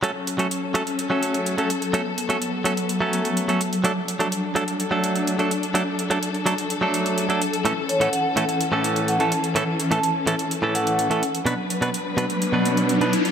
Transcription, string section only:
0.04 7.61 F#3 medium
0.04 1.92 C#4 medium
0.04 3.81 A4 medium
1.94 3.83 B3 medium
3.85 7.62 D4 medium
3.85 11.42 A4 medium
7.65 11.43 E3 medium
7.65 11.43 C#4 medium
11.46 13.31 F#3 medium
11.46 13.31 D4 medium
11.46 13.31 B4 medium

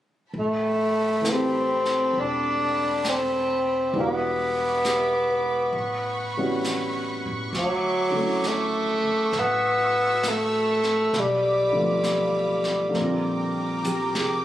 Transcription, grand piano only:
1.21 3.91 E3 soft
1.21 3.94 A3 soft
1.27 3.96 C4 soft
1.27 3.95 B4 soft
1.32 3.98 G4 soft
3.93 5.73 E3 soft
3.93 5.74 G3 soft
3.93 5.74 B3 soft
3.93 5.75 D4 soft
3.98 5.76 F#4 soft
4.86 5.57 G4 soft
5.30 5.93 B4 soft
6.37 7.54 E3 soft
6.37 7.55 G3 soft
6.37 7.55 B3 soft
6.37 7.55 C#4 soft
6.37 7.56 F#4 medium
8.10 11.11 D3 soft
8.10 11.13 F#3 soft
8.16 11.14 A3 soft
8.16 11.15 C#4 soft
8.21 11.17 E4 soft
11.71 12.87 D3 soft
11.71 12.90 F3 soft
11.76 12.94 A3 soft
11.76 12.96 B3 soft
11.82 12.97 F4 soft
12.89 14.45 D3 soft
12.89 14.45 F3 soft
12.95 14.45 A#3 soft
12.95 14.45 C4 soft
13.00 14.45 F4 soft
13.85 14.43 G4 soft
14.15 14.45 G#4 soft

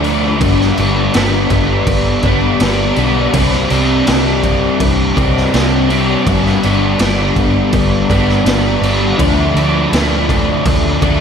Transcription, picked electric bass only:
0.00 0.43 D2 loud
0.41 0.71 G1 loud
0.78 1.08 G1 medium
1.16 1.45 G1 loud
1.51 1.80 G1 medium
1.87 2.17 G1 loud
2.24 2.54 G1 medium
2.61 2.91 G1 loud
2.97 3.27 B1 medium
3.34 3.64 C2 medium
3.71 4.00 C2 medium
4.08 4.68 C2 medium
4.81 5.10 C2 medium
5.17 5.47 C2 medium
5.54 6.14 C2 medium
6.27 6.57 G1 medium
6.64 6.94 G1 medium
7.00 7.30 G1 medium
7.36 7.66 G1 medium
7.74 8.04 G1 loud
8.10 8.40 G1 medium
8.45 8.76 G1 medium
8.82 9.12 G1 medium
9.20 9.50 D2 loud
9.54 9.85 D2 medium
9.93 10.53 D2 medium
10.66 10.96 D2 medium
11.02 11.21 D2 medium

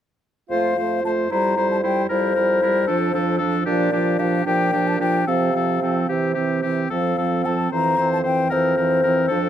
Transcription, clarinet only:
0.49 0.76 F4 soft
0.76 1.02 F4 soft
1.03 1.29 F4 soft
1.30 1.55 E4 soft
1.56 1.82 E4 soft
1.83 2.08 E4 soft
2.09 2.35 E4 soft
2.36 2.61 E4 soft
2.61 2.87 E4 soft
2.88 3.13 D4 soft
3.14 3.39 D4 soft
3.40 3.65 D4 soft
3.65 3.91 D4 medium
3.92 4.18 D4 soft
4.18 4.45 D4 soft
4.45 4.72 D4 soft
4.72 4.99 D4 soft
4.99 5.27 D4 soft
5.27 5.53 C4 soft
5.54 5.81 C4 soft
5.81 6.09 C4 soft
6.09 6.35 C4 soft
6.35 6.63 C4 soft
6.64 6.91 C4 soft
6.91 7.18 C4 soft
7.19 7.45 C4 soft
7.46 7.72 C4 soft
7.73 7.98 C4 soft
7.99 8.24 C4 soft
8.24 8.51 C4 soft
8.51 8.77 C4 soft
8.78 9.03 C4 soft
9.04 9.30 C4 soft
9.30 9.49 D4 soft

